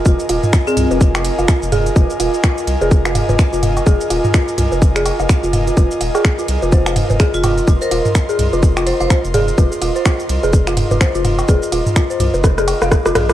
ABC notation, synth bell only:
X:1
M:4/4
L:1/16
Q:"Swing 16ths" 1/4=126
K:Fm
V:1 name="Synth bell"
F z F z2 A z F z F z F z2 A z | F z F z F z2 A z F z F z F z2 | A z F z F z F z2 A z F z F z F | F z2 A z F z F c F z2 A z F z |
F c F z2 A z F z F c F z2 A z | F z F c F z2 A z F z F c F z2 | A z F z F c F z2 A z f z F A F |]